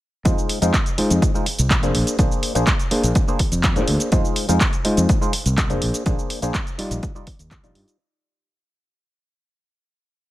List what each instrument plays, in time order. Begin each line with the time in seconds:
0.25 fingered electric bass F2, clav G#3 D#4 F4 C5, kick, closed hi-hat, shaker
0.38 shaker
0.49 open hi-hat
0.62 fingered electric bass F2, clav G#3 D#4 F4 C5, closed hi-hat, shaker
0.74 kick, clap, closed hi-hat, shaker
0.86 closed hi-hat, shaker
0.98 clav G#3 D#4 F4 C5, muted fingered electric bass stroke, open hi-hat
1.10 fingered electric bass F2, closed hi-hat, shaker
1.22 kick, closed hi-hat, shaker
1.34 clav G#3 D#4 F4 C5, shaker
1.46 open hi-hat
1.59 fingered electric bass C2, closed hi-hat, shaker
1.71 kick, clap, closed hi-hat, shaker
1.83 fingered electric bass F1, clav A#3 D4 G#4 C5, closed hi-hat, shaker
1.95 fingered electric bass A#1, open hi-hat
2.07 closed hi-hat, shaker
2.19 fingered electric bass A#1, clav A#3 D4 G#4 C5, kick, closed hi-hat, shaker
2.32 shaker
2.43 open hi-hat
2.55 fingered electric bass A#1, clav A#3 D4 G#4 C5, closed hi-hat, shaker
2.67 kick, clap, closed hi-hat, shaker
2.79 closed hi-hat, shaker
2.91 clav A#3 D4 G#4 C5, muted fingered electric bass stroke, open hi-hat
3.04 fingered electric bass A#1, closed hi-hat, shaker
3.15 kick, closed hi-hat, shaker
3.28 clav A#3 D4 G#4 C5, shaker
3.39 kick, open hi-hat
3.52 fingered electric bass F2, closed hi-hat, shaker
3.64 kick, clap, closed hi-hat, shaker
3.76 fingered electric bass A#2, clav A#3 D4 G#4 C5, closed hi-hat, shaker
3.88 fingered electric bass D2, open hi-hat
4.00 closed hi-hat, shaker
4.12 fingered electric bass F2, clav G#3 D#4 F4 C5, kick, closed hi-hat, shaker
4.25 shaker
4.36 open hi-hat
4.49 fingered electric bass F2, clav G#3 D#4 F4 C5, closed hi-hat, shaker
4.61 kick, clap, closed hi-hat, shaker
4.73 closed hi-hat, shaker
4.85 clav G#3 D#4 F4 C5, muted fingered electric bass stroke, open hi-hat
4.97 fingered electric bass F2, closed hi-hat, shaker
5.09 kick, closed hi-hat, shaker
5.21 clav G#3 D#4 F4 C5, shaker
5.33 open hi-hat
5.46 fingered electric bass C2, closed hi-hat, shaker
5.58 kick, clap, closed hi-hat, shaker
5.70 fingered electric bass F1, clav A#3 D4 G#4 C5, closed hi-hat, shaker
5.82 fingered electric bass A#1, open hi-hat
5.94 closed hi-hat, shaker
6.06 fingered electric bass A#1, clav A#3 D4 G#4 C5, kick, closed hi-hat, shaker
6.19 shaker
6.30 open hi-hat
6.42 fingered electric bass A#1, clav A#3 D4 G#4 C5, closed hi-hat, shaker
6.54 kick, clap, closed hi-hat, shaker
6.67 closed hi-hat, shaker
6.78 clav G3 D#4 F4 D5, muted fingered electric bass stroke, open hi-hat
6.91 fingered electric bass A#1, closed hi-hat, shaker
7.03 kick, closed hi-hat, shaker
7.15 clav G3 D#4 F4 D5, shaker
7.27 kick, open hi-hat
7.39 fingered electric bass D#2, closed hi-hat, shaker
7.51 kick, clap, closed hi-hat, shaker
7.63 fingered electric bass A#1, clav G3 D#4 F4 D5, closed hi-hat, shaker
7.75 fingered electric bass G2, open hi-hat
7.88 closed hi-hat, shaker